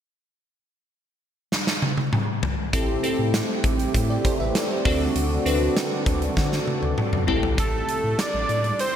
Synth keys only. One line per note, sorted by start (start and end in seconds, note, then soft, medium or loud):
2.73 2.93 C4 medium
2.73 2.93 E4 medium
2.73 2.94 G4 medium
2.73 2.94 A4 medium
3.03 3.84 C4 medium
3.03 3.84 E4 medium
3.03 3.84 G4 medium
3.03 3.85 A4 medium
4.10 4.24 A4 soft
4.10 4.24 D5 medium
4.25 4.39 G4 medium
4.25 4.39 C5 medium
4.40 4.55 B4 medium
4.40 4.54 E5 medium
4.55 4.70 A4 medium
4.55 4.69 D5 medium
4.70 4.99 G4 soft
4.70 4.99 C5 medium
4.85 5.34 C4 medium
4.85 5.34 D4 medium
4.85 5.34 F#4 medium
4.85 5.34 A4 medium
5.46 6.26 C4 medium
5.46 6.27 D4 medium
5.46 6.27 F#4 medium
5.46 6.27 B4 medium
7.27 7.52 C4 medium
7.27 7.52 E4 medium
7.27 7.52 G4 medium
7.27 7.52 A4 loud
7.58 8.39 C4 medium
7.58 8.39 E4 medium
7.58 8.39 G4 medium
7.58 8.39 A4 medium